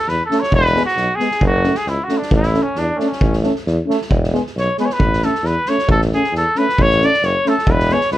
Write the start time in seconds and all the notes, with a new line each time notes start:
Already playing: A4
0.07 E2 B4, snare
0.26 A4
0.30 A3 C#4, snare
0.40 C#5, snare
0.52 E1 B4, kick
0.65 snare
0.74 G#3 B3, snare
0.86 F#4, snare
0.96 B1, snare
1.15 B3 G#4
1.19 G#3, snare
1.31 snare
1.41 F#1, kick
1.46 F#4
1.63 A3 C#4, snare
1.74 G#4, snare
1.86 C#2 E4, snare
2.04 F#4
2.08 A3 C#4, snare
2.17 D4
2.22 snare
2.31 A1, kick
2.36 E4
2.43 snare
2.53 A3 C#4, snare
2.63 C#4
2.75 E2 D4, snare
2.96 A3 C#4 D4, snare
3.00 C#4
3.07 C#4
3.12 snare
3.21 A1, kick
3.33 snare
3.42 A3 C#4, snare
3.55 snare
3.66 E2, snare
3.86 A3 C#4, snare
4.01 snare
4.09 E1, kick
4.23 snare
4.32 G#3 B3, snare
4.46 snare
4.55 B1 C#5, snare
4.77 G#3 B3 B4, snare
4.86 C#5, snare
4.93 B4
4.98 A1, kick
5.13 snare
5.22 A3 C#4 A4, snare
5.34 snare
5.43 E2 B4, snare
5.65 A3 C#4 C#5, snare
5.78 snare
5.88 A1 A4, kick
6.01 snare
6.12 A3 C#4 G#4, snare
6.24 snare
6.32 E2, snare
6.37 A4
6.55 A3 C#4 B4, snare
6.69 snare
6.78 A1 C#5, kick
6.90 snare
7.00 A3 C#4, snare
7.05 D5
7.13 snare
7.22 F#1 C#5, snare
7.45 A3 C#4 A4, snare
7.58 snare
7.67 E1, kick
7.71 B4
7.79 snare
7.89 G#3 B3 C#5, snare
8.00 snare
8.11 C#2 B4, snare